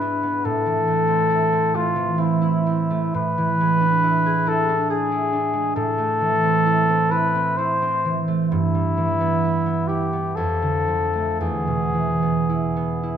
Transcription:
0.00 0.48 G#2 soft
0.00 0.48 G#3 soft
0.00 0.22 B3 soft
0.00 0.48 D4 soft
0.00 1.28 E4 soft
0.00 0.47 B4 medium
0.23 0.48 B3 soft
0.45 3.13 A2 soft
0.45 1.77 A4 medium
0.66 1.95 E3 soft
0.88 1.73 A3 soft
1.08 1.51 C4 soft
1.29 2.40 E4 soft
1.52 2.17 C4 soft
1.74 2.89 A3 soft
1.74 2.21 F4 medium
1.96 3.18 E3 soft
2.18 2.65 C4 soft
2.18 3.15 E4 soft
2.42 4.02 E4 soft
2.66 3.19 C4 soft
2.90 3.18 A3 soft
3.14 5.75 A2 soft
3.14 4.50 B4 medium
3.38 5.80 E3 soft
3.61 5.52 G#3 soft
3.80 4.68 D4 soft
4.03 4.45 E4 soft
4.26 4.89 G#4 soft
4.46 5.10 E4 soft
4.46 4.90 A4 medium
4.69 5.31 D4 soft
4.90 5.80 G#4 soft
4.90 5.75 G#4 medium
5.12 6.65 E4 soft
5.33 5.80 D4 soft
5.53 5.79 G#3 soft
5.76 8.54 A2 soft
5.76 7.12 A4 medium
5.98 8.27 A3 soft
6.21 8.04 E3 soft
6.44 6.88 C4 soft
6.66 7.10 E4 soft
6.89 7.34 C4 soft
7.11 7.57 E4 soft
7.11 7.59 B4 medium
7.35 7.81 C4 soft
7.57 9.43 E4 soft
7.57 8.22 C5 medium
7.82 8.55 C4 soft
8.05 8.55 E3 soft
8.28 8.55 A3 soft
8.49 10.42 G2 soft
8.49 9.89 E4 medium
8.74 10.42 G3 soft
8.97 10.42 E3 soft
9.21 9.65 B3 soft
9.44 9.88 E4 soft
9.66 10.12 B3 soft
9.88 10.41 E4 soft
9.88 10.37 G4 medium
10.13 10.41 B3 soft
10.36 11.45 F2 soft
10.36 11.40 A4 medium
10.62 11.45 D3 soft
10.87 11.45 F3 soft
11.13 11.45 A3 soft
11.40 13.17 E2 soft
11.40 13.17 G#4 medium
11.67 13.17 B2 soft
11.94 13.17 E3 soft
12.22 12.75 B3 soft
12.49 13.02 E4 soft
12.77 13.17 B3 soft
13.03 13.17 E4 soft

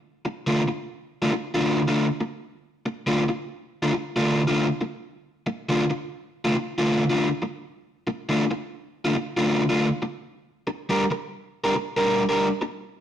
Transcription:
0.25 muted overdriven electric guitar stroke soft
0.47 0.61 D3 medium
0.47 0.61 A3 medium
0.47 0.61 D4 medium
0.47 0.61 F4 medium
0.68 muted overdriven electric guitar stroke soft
1.22 1.32 D3 medium
1.22 1.32 A3 medium
1.22 1.32 D4 medium
1.22 1.33 F4 medium
1.33 muted overdriven electric guitar stroke soft
1.54 1.81 D3 medium
1.54 1.81 A3 medium
1.54 1.80 D4 medium
1.54 1.80 F4 medium
1.88 2.06 D3 medium
1.88 2.06 A3 medium
1.88 2.06 D4 medium
1.88 2.05 F4 medium
2.21 muted overdriven electric guitar stroke soft
2.86 muted overdriven electric guitar stroke medium
3.07 3.21 D3 medium
3.07 3.22 A3 medium
3.07 3.22 D4 medium
3.07 3.22 F4 medium
3.28 muted overdriven electric guitar stroke soft
3.82 3.92 D3 medium
3.82 3.93 A3 medium
3.82 3.93 D4 medium
3.82 3.93 F4 medium
3.93 muted overdriven electric guitar stroke soft
4.16 4.42 D3 medium
4.16 4.42 A3 medium
4.16 4.42 D4 medium
4.16 4.41 F4 loud
4.47 4.66 D3 medium
4.47 4.66 A3 medium
4.47 4.66 D4 medium
4.47 4.66 F4 medium
4.81 muted overdriven electric guitar stroke soft
5.46 muted overdriven electric guitar stroke medium
5.69 5.83 D3 medium
5.69 5.83 A3 medium
5.69 5.83 D4 medium
5.69 5.83 F4 medium
5.90 muted overdriven electric guitar stroke soft
6.45 6.55 D3 medium
6.45 6.55 A3 medium
6.45 6.56 D4 medium
6.45 6.55 F4 medium
6.56 muted overdriven electric guitar stroke soft
6.78 7.03 D3 medium
6.78 7.03 A3 medium
6.78 7.03 D4 medium
6.78 7.03 F4 medium
7.10 7.28 D3 medium
7.10 7.27 A3 medium
7.10 7.27 D4 medium
7.10 7.27 F4 medium
7.42 muted overdriven electric guitar stroke soft
8.07 muted overdriven electric guitar stroke medium
8.29 8.43 D3 medium
8.29 8.43 A3 medium
8.29 8.43 D4 medium
8.29 8.43 F4 medium
8.51 muted overdriven electric guitar stroke soft
9.05 9.14 D3 medium
9.05 9.14 A3 medium
9.05 9.15 D4 medium
9.05 9.15 F4 medium
9.15 muted overdriven electric guitar stroke soft
9.37 9.63 D3 medium
9.37 9.62 A3 medium
9.37 9.62 D4 medium
9.37 9.62 F4 medium
9.69 9.87 D3 medium
9.69 9.87 A3 medium
9.69 9.87 D4 medium
9.69 9.87 F4 medium
10.02 muted overdriven electric guitar stroke soft
10.67 muted overdriven electric guitar stroke soft
10.89 11.03 G3 medium
10.89 11.03 D4 medium
10.89 11.03 G4 medium
10.89 11.04 A#4 medium
11.11 muted overdriven electric guitar stroke soft
11.64 11.74 G3 medium
11.64 11.74 D4 medium
11.64 11.75 G4 medium
11.64 11.75 A#4 medium
11.75 muted overdriven electric guitar stroke soft
11.97 12.22 G3 medium
11.97 12.22 D4 medium
11.97 12.22 G4 medium
11.97 12.22 A#4 loud
12.29 12.47 G3 medium
12.29 12.47 D4 medium
12.29 12.47 G4 medium
12.29 12.47 A#4 medium
12.61 muted overdriven electric guitar stroke soft

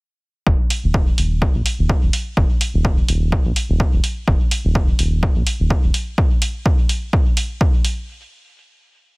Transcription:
0.47 0.55 D#1 medium
0.47 kick loud
0.70 open hi-hat medium
0.84 1.12 D#1 medium
0.94 kick loud
1.18 1.47 D#1 medium
1.18 open hi-hat medium
1.42 kick loud
1.55 1.62 A#1 medium
1.66 open hi-hat medium
1.79 1.93 D#1 medium
1.89 kick loud
2.03 2.09 D#1 medium
2.13 open hi-hat medium
2.37 2.46 D#1 medium
2.37 kick loud
2.61 open hi-hat medium
2.74 3.02 D#1 medium
2.85 kick loud
3.08 3.38 D#1 medium
3.08 open hi-hat medium
3.32 kick loud
3.46 3.52 A#1 medium
3.56 open hi-hat medium
3.69 3.84 D#1 medium
3.80 kick loud
3.93 4.00 D#1 medium
4.04 open hi-hat medium
4.28 4.36 D#1 loud
4.28 kick loud
4.51 open hi-hat medium
4.65 4.93 D#1 medium
4.75 kick loud
4.99 5.28 D#1 medium
4.99 open hi-hat medium
5.23 kick loud
5.36 5.43 A#1 medium
5.47 open hi-hat medium
5.60 5.74 D#1 medium
5.70 kick loud
5.84 5.90 D#1 medium
5.94 open hi-hat medium
6.18 kick loud
6.42 open hi-hat medium
6.66 kick loud
6.89 open hi-hat medium
7.13 kick loud
7.37 open hi-hat medium
7.61 kick loud
7.85 open hi-hat medium

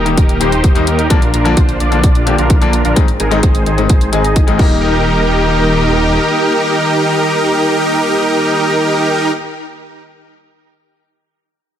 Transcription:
0.00 0.15 D#1 medium
0.00 1.07 D#3 medium
0.00 2.93 A#3 medium
0.00 1.07 G4 medium
0.05 0.14 D#3 medium
0.05 0.14 G3 medium
0.05 0.14 A#3 medium
0.05 0.14 D#4 medium
0.05 closed hi-hat soft
0.17 0.39 D#1 medium
0.17 0.38 D#4 medium
0.17 0.38 G4 medium
0.17 0.38 A#4 medium
0.17 kick loud
0.17 closed hi-hat medium
0.29 closed hi-hat soft
0.40 0.73 D#1 medium
0.40 0.49 D#3 medium
0.40 0.49 G3 medium
0.40 0.49 A#3 medium
0.40 0.73 D#4 medium
0.40 0.73 G4 medium
0.40 0.49 G4 medium
0.40 0.73 C5 medium
0.40 closed hi-hat medium
0.52 closed hi-hat soft
0.64 kick loud
0.64 closed hi-hat medium
0.75 0.85 D#2 medium
0.75 0.83 D#3 medium
0.75 0.84 G3 medium
0.75 0.84 A#3 medium
0.75 0.86 D#4 medium
0.75 0.84 D#4 medium
0.75 0.86 G4 medium
0.75 0.86 C5 medium
0.75 closed hi-hat soft
0.87 1.08 D#2 medium
0.87 1.08 D#4 medium
0.87 1.08 G4 medium
0.87 1.08 A#4 medium
0.87 closed hi-hat medium
0.99 closed hi-hat soft
1.10 1.32 A#1 medium
1.10 1.18 D3 medium
1.10 1.18 F3 medium
1.10 2.95 F3 medium
1.10 1.19 A#3 medium
1.10 1.31 D4 medium
1.10 2.95 D4 medium
1.10 1.19 D4 medium
1.10 1.31 F4 medium
1.10 1.31 A#4 medium
1.10 kick loud
1.10 closed hi-hat medium
1.22 closed hi-hat soft
1.34 1.55 A#1 medium
1.34 1.54 D4 medium
1.34 1.54 F4 medium
1.34 1.54 A#4 medium
1.34 closed hi-hat medium
1.45 1.53 D3 medium
1.45 1.53 F3 medium
1.45 1.54 A#3 medium
1.45 1.54 D4 medium
1.45 closed hi-hat soft
1.57 1.78 A#1 medium
1.57 1.78 D4 medium
1.57 1.78 F4 medium
1.57 1.78 C5 medium
1.57 kick loud
1.57 closed hi-hat medium
1.69 closed hi-hat soft
1.80 2.36 A#1 medium
1.80 2.36 D4 medium
1.80 2.36 F4 medium
1.80 2.36 D5 medium
1.80 closed hi-hat soft
1.91 2.00 D3 medium
1.91 2.00 F3 medium
1.91 2.00 A#3 medium
1.91 2.00 D4 medium
1.91 closed hi-hat soft
2.04 kick loud
2.04 closed hi-hat medium
2.15 closed hi-hat soft
2.26 2.35 D3 medium
2.26 2.35 F3 medium
2.26 2.35 A#3 medium
2.26 2.35 G4 medium
2.26 closed hi-hat medium
2.38 2.83 A#1 medium
2.38 2.82 D4 medium
2.38 2.82 F4 medium
2.38 2.82 A#4 medium
2.38 closed hi-hat soft
2.50 kick loud
2.50 closed hi-hat medium
2.61 2.70 D3 medium
2.61 2.70 F3 medium
2.61 2.70 A#3 medium
2.61 2.70 D4 medium
2.61 closed hi-hat soft
2.73 closed hi-hat medium
2.85 2.93 A#1 medium
2.85 2.95 D4 medium
2.85 2.95 F4 medium
2.85 2.95 A#4 loud
2.85 closed hi-hat soft
2.96 3.04 G#2 medium
2.96 3.04 D#3 medium
2.96 4.58 D#3 medium
2.96 3.05 G#3 medium
2.96 4.58 G#3 medium
2.96 4.58 C4 medium
2.96 3.05 C4 medium
2.96 3.05 D#4 medium
2.96 kick loud
2.96 closed hi-hat medium
3.08 closed hi-hat soft
3.20 3.41 G#1 medium
3.20 3.40 D#4 medium
3.20 3.40 G#4 medium
3.20 3.40 A#4 medium
3.20 closed hi-hat medium
3.31 3.39 G#2 medium
3.31 3.39 D#3 medium
3.31 3.40 G#3 medium
3.31 3.40 C4 medium
3.31 3.40 D#4 medium
3.31 closed hi-hat soft
3.43 3.64 G#1 medium
3.43 3.64 D#4 medium
3.43 3.64 G#4 medium
3.43 3.64 C5 loud
3.43 kick loud
3.43 closed hi-hat medium
3.55 closed hi-hat soft
3.66 3.87 G#1 medium
3.66 3.79 D#4 medium
3.66 3.79 G#4 medium
3.66 3.79 C5 medium
3.66 closed hi-hat soft
3.77 3.86 G#2 medium
3.77 3.86 D#3 medium
3.77 3.86 G#3 medium
3.77 3.86 C4 medium
3.77 3.86 D#4 medium
3.77 closed hi-hat soft
3.89 4.11 G#1 medium
3.89 4.10 D#4 medium
3.89 4.10 G#4 medium
3.89 4.10 C5 medium
3.89 kick loud
3.89 closed hi-hat medium
4.01 closed hi-hat soft
4.12 4.45 G#1 medium
4.12 4.21 G#2 medium
4.12 4.21 D#3 medium
4.12 4.21 G#3 medium
4.12 4.21 C4 medium
4.12 4.45 D#4 medium
4.12 4.45 G#4 medium
4.12 4.21 G#4 medium
4.12 4.45 D#5 medium
4.12 closed hi-hat medium
4.24 closed hi-hat soft
4.36 kick loud
4.36 closed hi-hat medium
4.47 4.57 G#1 medium
4.47 4.55 G#2 medium
4.47 4.56 D#3 medium
4.47 4.56 G#3 medium
4.47 4.56 C4 medium
4.47 4.58 D#4 medium
4.47 4.56 D#4 medium
4.47 4.58 G#4 medium
4.47 4.58 D#5 medium
4.47 closed hi-hat soft
4.58 6.18 D#1 medium
4.58 9.32 D#3 medium
4.58 9.31 D#3 medium
4.58 9.33 G3 medium
4.58 9.31 A#3 medium
4.58 9.34 A#3 medium
4.58 9.31 D#4 medium
4.58 9.35 D#4 medium
4.58 9.31 G4 medium
4.58 9.31 A#4 medium
4.58 kick loud
4.58 crash medium

